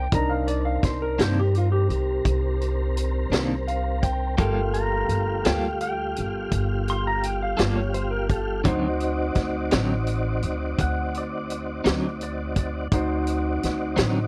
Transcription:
0.00 0.12 G5 medium
0.12 0.79 C2 medium
0.12 4.36 C4 medium
0.12 4.36 D4 soft
0.12 4.36 D#4 soft
0.12 4.36 A#4 medium
0.12 4.36 A#4 soft
0.12 0.31 A#5 medium
0.12 kick medium
0.12 closed hi-hat medium
0.30 0.47 F5 medium
0.48 0.65 D5 medium
0.48 closed hi-hat medium
0.65 0.83 F5 medium
0.83 1.16 C2 medium
0.83 1.01 C5 medium
0.83 kick medium
0.83 snare soft
0.83 closed hi-hat medium
1.02 1.19 A#4 medium
1.19 1.86 G2 medium
1.19 1.41 C3 soft
1.19 1.41 D#3 soft
1.19 1.40 A#3 medium
1.19 1.40 D4 soft
1.19 1.37 C5 medium
1.19 snare medium
1.19 closed hi-hat medium
1.39 1.55 G4 medium
1.55 1.71 F4 medium
1.55 closed hi-hat soft
1.72 1.89 G4 medium
1.89 2.22 C2 medium
1.89 4.00 G4 medium
1.89 closed hi-hat soft
2.25 3.28 C2 medium
2.25 kick medium
2.25 closed hi-hat medium
2.61 closed hi-hat soft
2.97 closed hi-hat medium
3.30 4.34 C2 medium
3.30 3.54 C3 medium
3.30 3.54 D#3 medium
3.30 3.54 A#3 medium
3.30 3.54 D4 medium
3.30 closed hi-hat medium
3.34 snare medium
3.67 4.01 F5 medium
3.67 closed hi-hat medium
4.02 4.36 G5 medium
4.02 kick medium
4.02 closed hi-hat soft
4.38 5.06 G1 medium
4.38 4.60 G3 medium
4.38 8.62 G3 medium
4.38 8.61 A3 soft
4.38 4.60 A#3 medium
4.38 8.61 A#3 soft
4.38 8.61 F4 soft
4.38 4.61 F4 medium
4.38 8.62 F4 medium
4.38 8.62 G4 medium
4.38 4.61 A4 medium
4.38 8.62 F5 medium
4.38 4.75 G5 medium
4.38 kick medium
4.38 closed hi-hat medium
4.74 5.43 A#5 medium
4.74 closed hi-hat medium
5.09 5.42 G1 medium
5.09 closed hi-hat medium
5.45 6.13 D2 medium
5.45 5.67 G3 medium
5.45 5.67 A#3 medium
5.45 5.67 F4 medium
5.45 5.67 A4 medium
5.45 5.80 G5 medium
5.45 snare medium
5.45 closed hi-hat medium
5.81 6.50 G5 medium
5.81 closed hi-hat medium
6.16 6.50 G1 medium
6.16 closed hi-hat medium
6.52 7.55 G1 medium
6.52 kick medium
6.52 closed hi-hat medium
6.88 7.06 C6 medium
6.88 closed hi-hat medium
7.07 7.24 A#5 medium
7.23 7.41 G5 medium
7.23 closed hi-hat medium
7.43 7.59 F5 medium
7.57 8.62 G1 medium
7.57 7.80 G3 soft
7.57 7.80 A#3 medium
7.57 7.80 F4 medium
7.57 7.79 A4 medium
7.57 7.76 D5 medium
7.57 snare medium
7.57 closed hi-hat medium
7.76 7.94 C#5 medium
7.94 8.12 C5 medium
7.94 closed hi-hat medium
8.11 8.29 A#4 medium
8.29 8.65 A4 loud
8.29 kick medium
8.29 closed hi-hat soft
8.64 9.32 D2 medium
8.64 8.86 D3 medium
8.64 8.87 F#3 medium
8.64 8.87 C4 medium
8.64 12.88 C4 medium
8.64 12.87 D#4 medium
8.64 8.87 D#4 medium
8.64 12.88 D#4 soft
8.64 12.88 F#4 medium
8.64 12.89 F#4 soft
8.64 12.89 C5 medium
8.64 12.88 D5 medium
8.64 kick loud
8.64 closed hi-hat medium
9.00 closed hi-hat medium
9.35 9.69 D2 medium
9.35 kick medium
9.35 snare soft
9.35 closed hi-hat soft
9.71 10.40 A1 medium
9.71 9.94 D3 medium
9.71 9.94 F#3 medium
9.71 9.93 C4 medium
9.71 9.93 D#4 medium
9.71 snare loud
9.71 closed hi-hat medium
10.07 closed hi-hat soft
10.43 10.76 D2 medium
10.43 closed hi-hat soft
10.79 11.81 D2 medium
10.79 11.14 F#5 medium
10.79 kick medium
10.79 closed hi-hat medium
11.14 12.19 D5 medium
11.14 closed hi-hat soft
11.50 closed hi-hat medium
11.84 12.88 D2 medium
11.84 12.07 D3 medium
11.84 12.07 F#3 medium
11.84 12.06 C4 medium
11.84 12.06 D#4 medium
11.84 snare medium
11.84 closed hi-hat medium
12.21 12.56 D5 medium
12.21 closed hi-hat medium
12.56 13.27 D5 medium
12.56 kick medium
12.56 closed hi-hat medium
12.92 13.59 D2 medium
12.92 14.27 C4 medium
12.92 14.27 D#4 medium
12.92 14.27 D#4 soft
12.92 14.27 F#4 medium
12.92 14.27 F#4 soft
12.92 14.27 C5 soft
12.92 14.27 D5 medium
12.92 kick medium
12.92 closed hi-hat medium
13.27 closed hi-hat medium
13.63 13.96 D2 medium
13.63 snare soft
13.63 closed hi-hat medium
13.96 14.27 A1 medium
13.96 14.19 D3 medium
13.96 14.19 F#3 medium
13.96 14.19 C4 medium
13.96 14.19 D#4 medium
13.96 snare medium
13.96 closed hi-hat medium

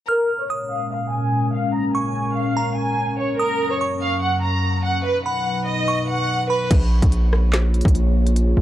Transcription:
0.09 3.36 A#2 medium
0.09 3.36 G#3 medium
0.09 5.01 C#4 medium
0.09 5.01 A#4 medium
0.09 0.38 A#4 loud
0.09 0.47 F6 medium
0.40 0.48 C#5 medium
0.50 1.70 D#6 medium
0.71 0.87 F5 medium
0.91 1.08 F5 medium
1.12 1.51 G#5 medium
1.53 1.70 F5 medium
1.74 1.91 A#5 medium
1.95 2.34 G#5 medium
1.95 2.53 C#6 medium
2.36 2.75 F5 medium
2.57 2.96 A#5 medium
2.77 3.16 G#5 medium
3.19 3.36 C#5 medium
3.39 5.04 F#2 medium
3.39 5.04 F#3 medium
3.39 3.69 A#4 loud
3.39 3.78 D#6 loud
3.71 3.79 C#5 medium
3.81 5.01 C#6 medium
4.02 4.18 F5 loud
4.22 4.39 F#5 medium
4.43 4.82 A#5 medium
4.84 5.01 F#5 medium
5.05 6.69 B2 medium
5.05 6.69 F#3 medium
5.05 6.69 D#4 medium
5.05 5.22 B4 medium
5.05 6.69 B4 medium
5.26 5.65 F#5 medium
5.26 5.84 B5 medium
5.67 6.06 D#5 medium
5.88 6.46 C#6 medium
6.08 6.47 F#5 medium
6.50 6.67 B4 medium
6.50 6.70 B5 medium
6.71 7.01 A#1 loud
6.71 8.62 A#3 medium
6.71 8.62 F4 medium
6.71 8.62 G#4 medium
6.71 8.62 C#5 medium
6.71 kick loud
6.71 closed hi-hat medium
6.71 crash loud
7.02 7.82 A#1 loud
7.02 kick loud
7.02 closed hi-hat medium
7.12 closed hi-hat medium
7.33 cross-stick loud
7.53 snare loud
7.53 clap medium
7.53 closed hi-hat medium
7.74 closed hi-hat soft
7.81 closed hi-hat medium
7.85 8.54 A#1 loud
7.85 kick loud
7.85 closed hi-hat medium
7.95 closed hi-hat medium
8.27 closed hi-hat medium
8.36 closed hi-hat medium
8.57 8.62 A#1 loud

